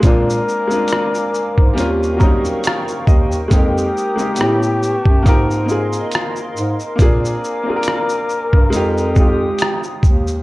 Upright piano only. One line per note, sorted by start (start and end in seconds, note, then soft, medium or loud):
0.00 0.63 G#3 medium
0.00 0.64 A#3 medium
0.00 0.65 C4 medium
0.05 0.66 D4 medium
0.05 0.66 F4 medium
0.67 1.76 G#3 medium
0.67 1.73 A#3 medium
0.67 1.75 C4 medium
0.72 1.78 D4 medium
0.72 1.79 F4 medium
1.73 2.16 G3 medium
1.73 2.16 A#3 medium
1.73 2.17 C4 medium
1.78 2.18 C#4 medium
1.78 2.19 F4 medium
2.16 2.26 F#3 medium
2.16 3.40 A#3 medium
2.16 3.41 C4 medium
2.16 2.61 A#5 medium
2.22 3.42 G3 medium
2.22 3.42 C#4 medium
2.22 3.42 D#4 medium
2.65 3.05 F5 medium
3.07 3.48 D#5 medium
3.48 4.11 G#3 medium
3.48 4.12 A#3 medium
3.48 4.13 C4 medium
3.53 4.14 D#4 medium
3.53 4.14 G4 medium
4.16 4.37 G#3 medium
4.16 4.37 A#3 medium
4.16 4.38 C4 medium
4.20 4.39 D#4 medium
4.20 4.39 G4 medium
4.34 5.16 A3 medium
4.34 5.17 B3 medium
4.34 5.18 C#4 medium
4.39 5.19 E4 medium
4.39 5.20 G4 medium
5.22 5.64 A#3 medium
5.22 5.65 C4 medium
5.22 5.66 D#4 medium
5.27 5.66 F4 medium
5.27 5.67 A#4 loud
5.65 6.87 A#3 medium
5.65 6.88 C4 medium
5.65 6.89 D#4 medium
5.70 6.90 F4 medium
5.70 6.90 G#4 medium
6.96 7.59 A#3 medium
6.96 7.60 C4 medium
6.96 7.60 D4 medium
7.00 7.61 F4 medium
7.00 7.62 G#4 medium
7.63 8.71 A#3 medium
7.63 8.70 C4 medium
7.63 8.73 D4 medium
7.68 8.74 F4 medium
7.68 7.74 G#4 medium
7.76 8.78 A#4 medium
8.70 9.12 G#3 medium
8.70 9.13 C4 medium
8.70 9.13 D#4 medium
8.75 9.14 F4 medium
8.75 9.15 G4 medium
9.15 10.36 G#3 medium
9.15 10.37 C4 medium
9.15 10.38 D#4 medium
9.20 10.38 F4 medium
9.20 9.26 G4 medium
9.28 10.43 G4 medium